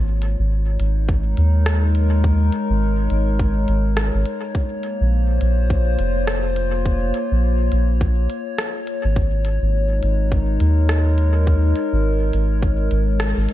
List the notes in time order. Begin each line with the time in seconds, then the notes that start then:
Already playing: G#1 G#3 A#3 F4 C#5
0.13 D#4
0.22 closed hi-hat
0.39 G#1
0.80 G#1, closed hi-hat
0.85 A#4
1.09 kick
1.37 D#2, closed hi-hat
1.66 cross-stick
1.95 closed hi-hat
2.24 kick
2.52 closed hi-hat
2.70 G#1
3.10 G#1, closed hi-hat
3.39 kick
3.68 G#1, closed hi-hat
3.97 cross-stick
4.14 G#1
4.26 closed hi-hat
4.55 A#3, kick
4.75 F4 C5
4.83 closed hi-hat
5.01 A#1
5.41 A#1, closed hi-hat
5.70 kick
5.99 F1, closed hi-hat
6.27 cross-stick
6.56 closed hi-hat
6.86 kick
7.14 closed hi-hat
7.32 A#1
7.72 A#1, closed hi-hat
8.01 kick
8.30 closed hi-hat
8.58 cross-stick
8.87 closed hi-hat
9.04 G#1
9.16 G#3, kick
9.36 D#4
9.45 closed hi-hat
9.62 G#1
9.76 A#4
10.03 G#1, closed hi-hat
10.32 kick
10.60 D#2, closed hi-hat
10.89 cross-stick
11.18 closed hi-hat
11.47 kick
11.76 closed hi-hat
11.93 G#1
12.33 G#1, closed hi-hat
12.63 kick
12.91 G#1, closed hi-hat
13.20 cross-stick
13.37 G#1
13.49 closed hi-hat